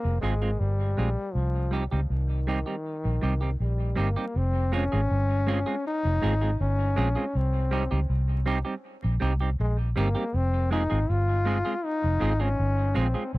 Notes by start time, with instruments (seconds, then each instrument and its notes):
Already playing: trombone A#3
0.05 fingered electric bass F1
0.21 fingered electric bass G#1, trombone G#3, clean electric guitar G#3 C4 F4 G#4
0.42 clean electric guitar G#3 C4 F4 G#4
0.60 fingered electric bass G1, trombone G3
0.97 fingered electric bass A#1, clean electric guitar G#3 C4 F4 G#4
1.34 fingered electric bass C2, trombone F3
1.71 clean electric guitar G3 C4 D#4 G4
1.91 fingered electric bass C#2, clean electric guitar G3 C4 D#4 G4
2.10 fingered electric bass C2, trombone D#3
2.47 clean electric guitar G3 C4 D#4 G4
2.66 clean electric guitar G3 C4 D#4 G4
3.05 fingered electric bass A#1
3.21 fingered electric bass C2, clean electric guitar G3 C4 D#4 G4
3.41 clean electric guitar G3 C4 D#4 G4
3.60 fingered electric bass A#1, trombone G3
3.96 fingered electric bass G1, clean electric guitar G3 C4 D#4 G4, trombone A#3
4.16 clean electric guitar G3 C4 D#4 G4
4.36 fingered electric bass F1, trombone C4
4.72 clean electric guitar G#3 C4 F4 G#4, trombone C#4
4.92 fingered electric bass G#1, clean electric guitar G#3 C4 F4 G#4
5.11 fingered electric bass G1
5.47 clean electric guitar G#3 C4 F4 G#4
5.66 clean electric guitar G#3 C4 F4 G#4
5.87 trombone D#4
6.05 fingered electric bass F1
6.22 fingered electric bass G#1, clean electric guitar G#3 C4 F4 G#4
6.41 clean electric guitar G#3 C4 F4 G#4
6.61 fingered electric bass G1, trombone C#4
6.96 fingered electric bass A#1, clean electric guitar G#3 C4 F4 G#4
7.15 clean electric guitar G#3 C4 F4 G#4
7.35 fingered electric bass C2, trombone C4
7.71 clean electric guitar G3 C4 D#4 G4
7.91 fingered electric bass C#2, clean electric guitar G3 C4 D#4 G4
8.10 fingered electric bass C2
8.46 clean electric guitar G3 C4 D#4 G4
8.65 clean electric guitar G3 C4 D#4 G4
9.04 fingered electric bass A#1
9.20 fingered electric bass C2, clean electric guitar G3 C4 D#4 G4
9.41 clean electric guitar G3 C4 D#4 G4
9.60 fingered electric bass A#1, trombone G#3
9.96 fingered electric bass G1, clean electric guitar G3 C4 D#4 G4, trombone A#3
10.15 clean electric guitar G3 C4 D#4 G4
10.34 fingered electric bass F1, trombone C4
10.71 clean electric guitar G#3 C4 F4 G#4, trombone D#4
10.90 fingered electric bass G#1, clean electric guitar G#3 C4 F4 G#4
11.10 fingered electric bass G1, trombone F4
11.45 clean electric guitar G#3 C4 F4 G#4
11.65 clean electric guitar G#3 C4 F4 G#4
11.85 trombone D#4
12.04 fingered electric bass F1
12.20 fingered electric bass G#1, clean electric guitar G#3 C4 F4 G#4
12.40 clean electric guitar G#3 C4 F4 G#4, trombone C#4
12.59 fingered electric bass G1
12.94 fingered electric bass A#1, clean electric guitar G#3 C4 F4 G#4, trombone C4
13.14 clean electric guitar G#3 C4 F4 G#4
13.34 fingered electric bass C2